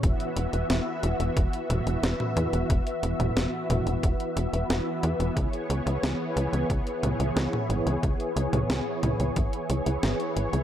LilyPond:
<<
  \new Staff \with { instrumentName = "Analog synth pad" } { \time 4/4 \key e \major \tempo 4 = 90 << { <fis' e''>1~ | <fis' e''>1 | <gis' cis''>1~ | <gis' cis''>1 | } \\ { <e b>1~ | <e b>1~ | <e b>1~ | <e b>1 | } >> }
  \new Staff \with { instrumentName = "Analog synth bass" } { \clef bass \time 4/4 \key e \major e,,16 r16 e,,16 e,,16 e,,16 r16 e,,16 e,,16 e,,16 r16 e,,16 e,,16 e,,16 r16 e,16 e,,16 | e,,16 r16 e,,16 e,,16 e,,16 r16 e,,16 e,,16 e,,16 r16 e,,16 e,,16 e,,16 r16 e,16 e,,16 | cis,16 r16 cis,16 cis,16 cis,16 r16 cis,16 cis,16 cis,16 r16 cis,16 cis,16 cis,16 r16 gis,,16 cis,16 | cis,16 r16 cis,16 cis,16 cis,16 r16 cis,16 cis,16 gis,,16 r16 cis,16 cis,16 gis,,16 r16 gis,,16 cis,16 | }
  \new DrumStaff \with { instrumentName = "Drums" } \drummode { \time 4/4 <hh bd>16 hh16 hh16 hh16 <hh sn>8 hh16 hh16 <hh bd>16 hh16 <hh toml>16 hh16 <hh sn>16 toml16 hh16 hh16 | <hh bd>16 hh16 hh16 <hh toml>16 <hh sn>8 <hh toml>16 hh16 <hh bd>16 hh16 hh16 hh16 <hh sn>8 hh16 hh16 | <hh bd>16 hh16 hh16 hh16 <hh sn>8 hh16 hh16 <hh bd>16 hh16 <hh toml>16 hh16 <hh sn>16 toml16 hh16 hh16 | <hh bd>16 hh16 hh16 <hh toml>16 <hh sn>8 <hh toml>16 hh16 <hh bd>16 hh16 hh16 hh16 <hh sn>16 hh16 hh16 hh16 | }
>>